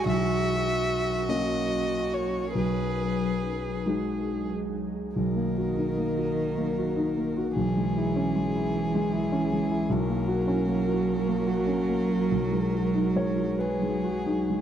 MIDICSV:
0, 0, Header, 1, 5, 480
1, 0, Start_track
1, 0, Key_signature, 5, "major"
1, 0, Tempo, 825309
1, 38, Time_signature, 6, 3, 24, 8
1, 999, Tempo, 862069
1, 2919, Tempo, 790514
1, 6759, Tempo, 840336
1, 7719, Tempo, 882353
1, 8503, End_track
2, 0, Start_track
2, 0, Title_t, "Violin"
2, 0, Program_c, 0, 40
2, 37, Note_on_c, 0, 76, 84
2, 754, Note_on_c, 0, 75, 61
2, 762, Note_off_c, 0, 76, 0
2, 1232, Note_on_c, 0, 73, 47
2, 1241, Note_off_c, 0, 75, 0
2, 1460, Note_off_c, 0, 73, 0
2, 1463, Note_on_c, 0, 71, 49
2, 2177, Note_off_c, 0, 71, 0
2, 2922, Note_on_c, 0, 70, 39
2, 4347, Note_off_c, 0, 70, 0
2, 4373, Note_on_c, 0, 68, 49
2, 5807, Note_on_c, 0, 70, 54
2, 5816, Note_off_c, 0, 68, 0
2, 7957, Note_on_c, 0, 68, 45
2, 7965, Note_off_c, 0, 70, 0
2, 8503, Note_off_c, 0, 68, 0
2, 8503, End_track
3, 0, Start_track
3, 0, Title_t, "Ambient pad"
3, 0, Program_c, 1, 92
3, 33, Note_on_c, 1, 70, 51
3, 34, Note_on_c, 1, 54, 51
3, 36, Note_on_c, 1, 61, 55
3, 1472, Note_off_c, 1, 70, 0
3, 1473, Note_off_c, 1, 61, 0
3, 1474, Note_on_c, 1, 68, 50
3, 1476, Note_on_c, 1, 63, 49
3, 2916, Note_off_c, 1, 54, 0
3, 2918, Note_off_c, 1, 68, 0
3, 2919, Note_off_c, 1, 63, 0
3, 2924, Note_on_c, 1, 54, 45
3, 2926, Note_on_c, 1, 63, 48
3, 2926, Note_on_c, 1, 70, 45
3, 4348, Note_off_c, 1, 54, 0
3, 4349, Note_off_c, 1, 63, 0
3, 4349, Note_off_c, 1, 70, 0
3, 4378, Note_on_c, 1, 68, 46
3, 4379, Note_on_c, 1, 64, 44
3, 4380, Note_on_c, 1, 52, 47
3, 5802, Note_off_c, 1, 68, 0
3, 5803, Note_off_c, 1, 52, 0
3, 5810, Note_on_c, 1, 70, 52
3, 5812, Note_on_c, 1, 54, 48
3, 7235, Note_on_c, 1, 63, 51
3, 7238, Note_on_c, 1, 68, 49
3, 7240, Note_off_c, 1, 64, 0
3, 7241, Note_off_c, 1, 70, 0
3, 8503, Note_off_c, 1, 54, 0
3, 8503, Note_off_c, 1, 63, 0
3, 8503, Note_off_c, 1, 68, 0
3, 8503, End_track
4, 0, Start_track
4, 0, Title_t, "Grand piano"
4, 0, Program_c, 2, 0
4, 0, Control_c, 2, 64, 127
4, 32, Note_on_c, 2, 35, 52
4, 49, Control_c, 2, 64, 0
4, 138, Control_c, 2, 64, 127
4, 729, Note_off_c, 2, 35, 0
4, 749, Note_on_c, 2, 58, 36
4, 749, Note_on_c, 2, 66, 36
4, 750, Note_on_c, 2, 61, 31
4, 1449, Note_off_c, 2, 66, 0
4, 1450, Note_off_c, 2, 58, 0
4, 1450, Note_off_c, 2, 61, 0
4, 1461, Note_on_c, 2, 35, 38
4, 1484, Control_c, 2, 64, 0
4, 1587, Control_c, 2, 64, 127
4, 2169, Note_off_c, 2, 35, 0
4, 2192, Note_on_c, 2, 56, 27
4, 2194, Note_on_c, 2, 63, 28
4, 2196, Note_on_c, 2, 66, 31
4, 2893, Note_off_c, 2, 56, 0
4, 2894, Note_off_c, 2, 63, 0
4, 2895, Note_off_c, 2, 66, 0
4, 2914, Note_on_c, 2, 35, 39
4, 2930, Control_c, 2, 64, 0
4, 3033, Note_on_c, 2, 58, 23
4, 3042, Control_c, 2, 64, 127
4, 3164, Note_on_c, 2, 66, 30
4, 3233, Note_off_c, 2, 58, 0
4, 3281, Note_on_c, 2, 63, 31
4, 3359, Note_off_c, 2, 66, 0
4, 3408, Note_on_c, 2, 58, 31
4, 3478, Note_off_c, 2, 63, 0
4, 3531, Note_on_c, 2, 66, 30
4, 3601, Note_off_c, 2, 58, 0
4, 3771, Note_on_c, 2, 58, 33
4, 3891, Note_off_c, 2, 66, 0
4, 3900, Note_on_c, 2, 66, 34
4, 3963, Note_off_c, 2, 58, 0
4, 4011, Note_on_c, 2, 63, 36
4, 4087, Note_off_c, 2, 66, 0
4, 4137, Note_on_c, 2, 58, 30
4, 4202, Note_off_c, 2, 63, 0
4, 4256, Note_on_c, 2, 66, 37
4, 4325, Note_off_c, 2, 58, 0
4, 4343, Note_off_c, 2, 35, 0
4, 4373, Note_off_c, 2, 66, 0
4, 4374, Note_on_c, 2, 35, 42
4, 4380, Control_c, 2, 64, 0
4, 4473, Control_c, 2, 64, 127
4, 4499, Note_on_c, 2, 56, 30
4, 4617, Note_on_c, 2, 64, 35
4, 4687, Note_off_c, 2, 56, 0
4, 4737, Note_on_c, 2, 61, 38
4, 4807, Note_off_c, 2, 64, 0
4, 4855, Note_on_c, 2, 56, 34
4, 4927, Note_off_c, 2, 61, 0
4, 4973, Note_on_c, 2, 64, 34
4, 5045, Note_off_c, 2, 56, 0
4, 5214, Note_on_c, 2, 56, 41
4, 5316, Note_off_c, 2, 64, 0
4, 5325, Note_on_c, 2, 64, 40
4, 5401, Note_off_c, 2, 56, 0
4, 5443, Note_on_c, 2, 61, 39
4, 5515, Note_off_c, 2, 64, 0
4, 5562, Note_on_c, 2, 56, 37
4, 5632, Note_off_c, 2, 61, 0
4, 5675, Note_on_c, 2, 64, 41
4, 5750, Note_off_c, 2, 56, 0
4, 5775, Note_off_c, 2, 35, 0
4, 5790, Note_on_c, 2, 35, 53
4, 5795, Note_off_c, 2, 64, 0
4, 5807, Control_c, 2, 64, 0
4, 5907, Note_on_c, 2, 58, 34
4, 5913, Control_c, 2, 64, 127
4, 6023, Note_on_c, 2, 66, 40
4, 6100, Note_off_c, 2, 58, 0
4, 6143, Note_on_c, 2, 61, 42
4, 6218, Note_off_c, 2, 66, 0
4, 6261, Note_on_c, 2, 58, 37
4, 6339, Note_off_c, 2, 61, 0
4, 6382, Note_on_c, 2, 66, 35
4, 6459, Note_off_c, 2, 58, 0
4, 6626, Note_on_c, 2, 58, 39
4, 6738, Note_off_c, 2, 66, 0
4, 6747, Note_on_c, 2, 66, 39
4, 6824, Note_off_c, 2, 58, 0
4, 6863, Note_on_c, 2, 61, 34
4, 6941, Note_off_c, 2, 66, 0
4, 6985, Note_on_c, 2, 58, 31
4, 7060, Note_off_c, 2, 61, 0
4, 7105, Note_on_c, 2, 66, 33
4, 7182, Note_off_c, 2, 58, 0
4, 7209, Note_off_c, 2, 35, 0
4, 7229, Note_on_c, 2, 35, 43
4, 7230, Note_off_c, 2, 66, 0
4, 7247, Control_c, 2, 64, 0
4, 7344, Note_on_c, 2, 56, 29
4, 7348, Control_c, 2, 64, 127
4, 7467, Note_on_c, 2, 66, 35
4, 7543, Note_off_c, 2, 56, 0
4, 7590, Note_on_c, 2, 63, 36
4, 7665, Note_off_c, 2, 66, 0
4, 7709, Note_on_c, 2, 56, 29
4, 7716, Note_on_c, 2, 73, 57
4, 7785, Note_off_c, 2, 63, 0
4, 7830, Note_on_c, 2, 66, 32
4, 7901, Note_off_c, 2, 56, 0
4, 7934, Note_off_c, 2, 73, 0
4, 7946, Note_on_c, 2, 71, 49
4, 8071, Note_on_c, 2, 56, 32
4, 8184, Note_off_c, 2, 66, 0
4, 8192, Note_on_c, 2, 66, 35
4, 8264, Note_off_c, 2, 56, 0
4, 8313, Note_on_c, 2, 63, 32
4, 8387, Note_off_c, 2, 66, 0
4, 8441, Note_on_c, 2, 56, 30
4, 8503, Note_off_c, 2, 35, 0
4, 8503, Note_off_c, 2, 56, 0
4, 8503, Note_off_c, 2, 63, 0
4, 8503, Note_off_c, 2, 71, 0
4, 8503, End_track
5, 0, Start_track
5, 0, Title_t, "Cello"
5, 0, Program_c, 3, 42
5, 0, Note_on_c, 3, 66, 58
5, 1472, Note_off_c, 3, 66, 0
5, 1475, Note_on_c, 3, 68, 39
5, 2540, Note_off_c, 3, 68, 0
5, 2921, Note_on_c, 3, 51, 38
5, 4347, Note_off_c, 3, 51, 0
5, 4366, Note_on_c, 3, 52, 43
5, 5797, Note_on_c, 3, 54, 52
5, 5806, Note_off_c, 3, 52, 0
5, 8503, Note_off_c, 3, 54, 0
5, 8503, End_track
0, 0, End_of_file